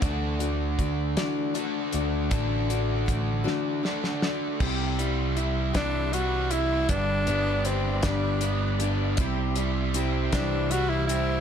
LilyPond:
<<
  \new Staff \with { instrumentName = "Tonewheel organ" } { \time 6/8 \key c \lydian \tempo 4. = 52 r2. | r2. | <e'' c'''>2. | <d'' b''>2. |
<e'' c'''>2. | }
  \new Staff \with { instrumentName = "Tonewheel organ" } { \clef bass \time 6/8 \key c \lydian r2. | r2. | g2.~ | g2.~ |
g2. | }
  \new Staff \with { instrumentName = "Tenor saxophone" } { \time 6/8 \key c \lydian r2. | r2. | r4. d'8 fis'8 e'8 | d'4 c'8 d'4 r8 |
r4. d'8 fis'16 e'16 e'8 | }
  \new Staff \with { instrumentName = "Steel-string acoustic guitar" } { \time 6/8 \key c \lydian <d e a d' fis' d''>8 <a d' fis' d''>8 <a d' fis' d''>8 <d e a d' fis' d''>8 <a d' fis' d''>8 <a d' fis' d''>8 | <d e a d' fis' d''>8 <a d' fis' d''>8 <a d' fis' d''>8 <d e a d' fis' d''>8 <a d' fis' d''>8 <a d' fis' d''>8 | <c g c' e' g'>8 <c' e' g'>8 <g c' e' g'>8 <c g c' e' g'>8 <g c' e'>8 <c' e' g'>8 | <g, d g b d' g'>8 <g b d' g'>8 <g d' g'>8 <g, d g b d' g'>8 <g b d' g'>8 <g b d' g'>8 |
<c g c' e' g'>8 <c' e' g'>8 <g c' e' g'>8 <c g c' e' g'>8 <g c' e' g'>8 <c' e' g'>8 | }
  \new Staff \with { instrumentName = "Overdriven electric guitar" } { \time 6/8 \key c \lydian <d d' fis' a'>2 <d d' fis' a'>4 | <d d' fis' a'>2 <d d' fis' a'>4 | c8 g8 e'8 e8 g8 e'8 | g,8 b8 d'8 g8 b8 d'8 |
c8 g8 c'8 e8 g8 c'8 | }
  \new Staff \with { instrumentName = "Picked electric bass" } { \clef bass \time 6/8 \key c \lydian d,4 d,8 r4 d,8 | a,,4 a,,8 r4. | c,4. c,4. | g,,8 g,,4 g,,4. |
c,4. c,4. | }
  \new DrumStaff \with { instrumentName = "Drums" } \drummode { \time 6/8 <hh bd>8 hh8 <hh bd>8 <hh sn>8 hh8 hh8 | <hh bd>8 hh8 <hh bd>8 sn8 sn16 sn16 sn8 | <cymc bd>8 hh8 hh8 <hh bd sn>8 hh8 hh8 | <hh bd>8 hh8 hh8 <hh bd sn>8 hh8 hh8 |
<hh bd>8 hh8 hh8 <hh bd sn>8 hh8 hh8 | }
>>